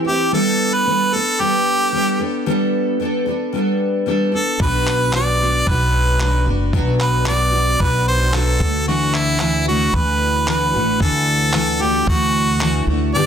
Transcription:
0.05 steel-string acoustic guitar C4 E4 G4, harmonica G4
0.32 steel-string acoustic guitar G3 B3 D4 A4, harmonica A4
0.74 harmonica B4
0.86 steel-string acoustic guitar G3 B3 D4 A4
1.12 steel-string acoustic guitar B3 D4 A4, harmonica A4
1.39 steel-string acoustic guitar G3 B3 D4 A4, harmonica G4
1.92 steel-string acoustic guitar G3 B3 D4 A4
2.19 steel-string acoustic guitar B3 D4 A4
2.46 steel-string acoustic guitar G3 B3 D4 A4
3.00 steel-string acoustic guitar G3 B3 D4 A4
3.26 steel-string acoustic guitar B3 D4 A4
3.53 steel-string acoustic guitar G3 B3 D4 A4
4.06 steel-string acoustic guitar G3 B3 D4 A4
4.32 steel-string acoustic guitar B3 D4 A4, harmonica A4
4.59 upright bass B1, steel-string acoustic guitar B2 F#3 B3 D4 F#4, harmonica B4, kick
4.87 clap
5.13 steel-string acoustic guitar F#3 B3 D4 F#4, harmonica D5, clap
5.40 steel-string acoustic guitar B3 D4 F#4
5.66 upright bass B1, steel-string acoustic guitar F#3 B3 D4 F#4, harmonica B4, kick
6.20 steel-string acoustic guitar F#3 B3 D4 F#4, clap
6.46 upright bass F#1, steel-string acoustic guitar B3 D4 F#4
6.73 upright bass B1, steel-string acoustic guitar B2 F#3 B3 D4 F#4, kick
7.00 harmonica B4, clap
7.26 steel-string acoustic guitar F#3 B3 D4 F#4, harmonica D5, clap
7.53 steel-string acoustic guitar B3 D4 F#4
7.79 upright bass B1, steel-string acoustic guitar F#3 B3 D4 F#4, harmonica B4, kick
8.08 harmonica C5
8.32 steel-string acoustic guitar F#3 B3 D4 F#4, harmonica A4, clap
8.60 upright bass D2, steel-string acoustic guitar A3 D4 F#4, kick
8.87 steel-string acoustic guitar D3 E3 A3 D4 F#4, harmonica F#4
9.14 harmonica E4, clap
9.39 steel-string acoustic guitar E3 A3 D4 F#4, clap
9.65 steel-string acoustic guitar A3 D4 F#4, harmonica F#4
9.92 upright bass D2, steel-string acoustic guitar E3 A3 D4 F#4, harmonica B4, kick
10.46 steel-string acoustic guitar E3 A3 D4 F#4, harmonica B4, clap
10.74 upright bass A1, steel-string acoustic guitar A3 D4 F#4
11.00 upright bass D2, steel-string acoustic guitar D3 E3 A3 D4 F#4, harmonica A4, kick
11.53 steel-string acoustic guitar E3 A3 D4 F#4, clap
11.80 steel-string acoustic guitar A3 D4 F#4, harmonica G4
12.07 upright bass D2, steel-string acoustic guitar E3 A3 D4 F#4, harmonica F#4, kick
12.60 steel-string acoustic guitar E3 A3 D4 F#4, clap
12.86 upright bass D2, steel-string acoustic guitar A3 D4 F#4
13.14 steel-string acoustic guitar G2 D3 G3 B3 D4 G4, harmonica D5

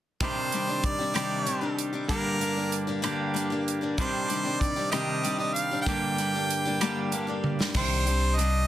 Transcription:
0.21 steel-string acoustic guitar C3 D#3 G3 C4 D4 G4, harmonica C5, kick, closed hi-hat
0.52 steel-string acoustic guitar G3 C4 D4 G4, closed hi-hat
0.67 steel-string acoustic guitar G3 C4 D4 G4
0.84 harmonica D5, kick, closed hi-hat
0.99 steel-string acoustic guitar G3 C4 D4 G4
1.14 steel-string acoustic guitar C3 D#3 G3 C4 D4 G4, harmonica D5, cross-stick, closed hi-hat
1.46 steel-string acoustic guitar G3 C4 D4 G4, closed hi-hat
1.61 steel-string acoustic guitar G3 C4 D4 G4
1.79 closed hi-hat
1.93 steel-string acoustic guitar G3 C4 D4 G4
2.09 steel-string acoustic guitar G2 D3 G3 A#3 D4 G4, harmonica A#4, kick, closed hi-hat
2.39 steel-string acoustic guitar G3 A#3 D4 G4, closed hi-hat
2.55 steel-string acoustic guitar G3 A#3 D4 G4
2.72 closed hi-hat
2.87 steel-string acoustic guitar G3 A#3 D4 G4
3.02 steel-string acoustic guitar G2 D3 G3 A#3 D4 G4, cross-stick, closed hi-hat
3.06 clean electric guitar G2
3.34 steel-string acoustic guitar G3 A#3 D4 G4, closed hi-hat
3.50 steel-string acoustic guitar G3 A#3 D4 G4
3.68 closed hi-hat
3.81 steel-string acoustic guitar G3 A#3 D4 G4
3.98 steel-string acoustic guitar C3 D#3 G3 C4 D4 G4, harmonica C5, kick, closed hi-hat
4.28 steel-string acoustic guitar G3 C4 D4 G4, closed hi-hat
4.44 steel-string acoustic guitar G3 C4 D4 G4
4.61 harmonica D5, kick, closed hi-hat
4.76 steel-string acoustic guitar G3 C4 D4 G4
4.91 steel-string acoustic guitar C3 D#3 G3 C4 G4, clean electric guitar D4, harmonica D#5, cross-stick, closed hi-hat
5.23 steel-string acoustic guitar G3 C4 D4 G4, closed hi-hat
5.38 steel-string acoustic guitar G3 C4 D4 G4, harmonica D#5
5.54 harmonica F5, closed hi-hat
5.71 steel-string acoustic guitar G3 C4 D4 G4
5.80 harmonica F5 G5
5.86 steel-string acoustic guitar G2 D3 G3 A#3 D4 G4, kick, closed hi-hat
6.18 steel-string acoustic guitar G3 A#3 D4 G4, closed hi-hat
6.34 steel-string acoustic guitar G3 A#3 D4 G4
6.50 closed hi-hat
6.65 steel-string acoustic guitar G3 A#3 D4 G4
6.81 steel-string acoustic guitar G2 D3 G3 A#3 D4 G4, cross-stick, closed hi-hat
7.12 steel-string acoustic guitar G3 A#3 D4 G4, closed hi-hat
7.27 steel-string acoustic guitar G3 A#3 D4 G4
7.44 high tom
7.59 steel-string acoustic guitar G3 A#3 D4 G4, snare
7.74 upright bass C2, steel-string acoustic guitar C3 D#3 G3 C4 D4 G4, harmonica C5, kick, crash
8.06 steel-string acoustic guitar G3 C4 D4 G4, closed hi-hat
8.37 steel-string acoustic guitar G3 C4 G4, clean electric guitar D4, harmonica D#5, closed hi-hat

